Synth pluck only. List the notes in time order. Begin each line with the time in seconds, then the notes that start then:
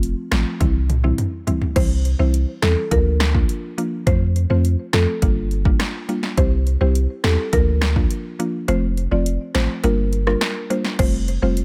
Already playing: F3 A3 C4 F4
0.31 F3 A3 C4 F4
0.60 E3 G3 C4 E4
1.04 E3 G3 C4 E4
1.47 E3 G3 C4 E4
1.76 E3 G3 C4 E4
2.19 E3 G3 C4 E4
2.62 E3 G3 C4 E4
2.91 F3 A#3 D4 F4
3.34 F3 A#3 D4 F4
3.78 F3 A#3 D4 F4
4.07 F3 A3 C4 F4
4.50 F3 A3 C4 F4
4.93 F3 A3 C4 F4
5.22 G3 A#3 D4 F4
5.65 G3 A#3 D4 F4
6.08 G3 A#3 D4 F4
6.37 G3 C4 E4 G4
6.81 G3 C4 E4 G4
7.24 G3 C4 E4 G4
7.53 F3 A#3 D4 F4
7.96 F3 A#3 D4 F4
8.39 F3 A#3 D4 F4
8.68 F3 A3 C4 F4
9.11 F3 A3 C4 F4
9.55 F3 A3 C4 F4
9.84 G3 A#3 D4 F4
10.27 G3 A#3 D4 F4
10.70 G3 A#3 D4 F4
10.99 G3 A3 C4 F4
11.42 G3 A3 C4 F4